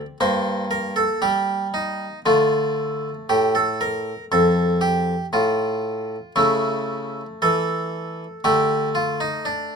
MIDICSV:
0, 0, Header, 1, 2, 480
1, 0, Start_track
1, 0, Tempo, 1025641
1, 1056, Time_signature, 4, 2, 24, 8
1, 4567, End_track
2, 0, Start_track
2, 0, Title_t, "Harpsichord"
2, 0, Program_c, 0, 6
2, 0, Note_on_c, 0, 60, 35
2, 81, Note_off_c, 0, 60, 0
2, 96, Note_on_c, 0, 58, 31
2, 97, Note_on_c, 0, 72, 74
2, 98, Note_on_c, 0, 43, 47
2, 299, Note_off_c, 0, 72, 0
2, 331, Note_on_c, 0, 70, 75
2, 450, Note_on_c, 0, 69, 78
2, 452, Note_off_c, 0, 70, 0
2, 478, Note_off_c, 0, 43, 0
2, 570, Note_on_c, 0, 67, 79
2, 571, Note_off_c, 0, 69, 0
2, 571, Note_on_c, 0, 55, 51
2, 776, Note_off_c, 0, 67, 0
2, 814, Note_on_c, 0, 63, 75
2, 958, Note_off_c, 0, 55, 0
2, 1020, Note_off_c, 0, 63, 0
2, 1035, Note_off_c, 0, 58, 0
2, 1056, Note_on_c, 0, 50, 52
2, 1057, Note_on_c, 0, 57, 35
2, 1057, Note_on_c, 0, 65, 71
2, 1443, Note_off_c, 0, 50, 0
2, 1468, Note_off_c, 0, 65, 0
2, 1542, Note_on_c, 0, 67, 80
2, 1543, Note_on_c, 0, 45, 52
2, 1661, Note_off_c, 0, 67, 0
2, 1661, Note_on_c, 0, 69, 75
2, 1781, Note_off_c, 0, 69, 0
2, 1782, Note_on_c, 0, 70, 79
2, 1923, Note_off_c, 0, 45, 0
2, 1983, Note_off_c, 0, 70, 0
2, 2021, Note_on_c, 0, 41, 47
2, 2021, Note_on_c, 0, 69, 74
2, 2252, Note_on_c, 0, 67, 79
2, 2255, Note_off_c, 0, 69, 0
2, 2399, Note_off_c, 0, 41, 0
2, 2456, Note_off_c, 0, 67, 0
2, 2494, Note_on_c, 0, 45, 52
2, 2496, Note_on_c, 0, 65, 84
2, 2880, Note_off_c, 0, 45, 0
2, 2957, Note_off_c, 0, 57, 0
2, 2976, Note_on_c, 0, 49, 61
2, 2977, Note_off_c, 0, 65, 0
2, 2977, Note_on_c, 0, 57, 39
2, 2977, Note_on_c, 0, 64, 84
2, 3371, Note_off_c, 0, 49, 0
2, 3396, Note_off_c, 0, 64, 0
2, 3473, Note_on_c, 0, 52, 55
2, 3473, Note_on_c, 0, 69, 87
2, 3854, Note_off_c, 0, 52, 0
2, 3929, Note_off_c, 0, 57, 0
2, 3949, Note_off_c, 0, 69, 0
2, 3952, Note_on_c, 0, 50, 51
2, 3952, Note_on_c, 0, 57, 38
2, 3952, Note_on_c, 0, 67, 82
2, 4153, Note_off_c, 0, 67, 0
2, 4188, Note_on_c, 0, 65, 87
2, 4306, Note_off_c, 0, 65, 0
2, 4308, Note_on_c, 0, 63, 76
2, 4331, Note_off_c, 0, 50, 0
2, 4424, Note_on_c, 0, 62, 86
2, 4425, Note_off_c, 0, 63, 0
2, 4567, Note_off_c, 0, 57, 0
2, 4567, Note_off_c, 0, 62, 0
2, 4567, End_track
0, 0, End_of_file